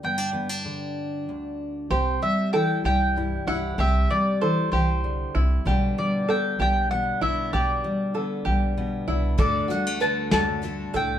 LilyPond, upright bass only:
\new Staff \with { instrumentName = "Upright bass" } { \clef bass \time 6/8 \key g \major \tempo 4. = 64 r2. | c,8 r4 c,4 c,8 | c,8 r4 c,4 c,8 | b,,8 r4 b,,4 b,,8 |
b,,8 r4 b,,4 c,8 | d,8 r4 d,4 c,8 | }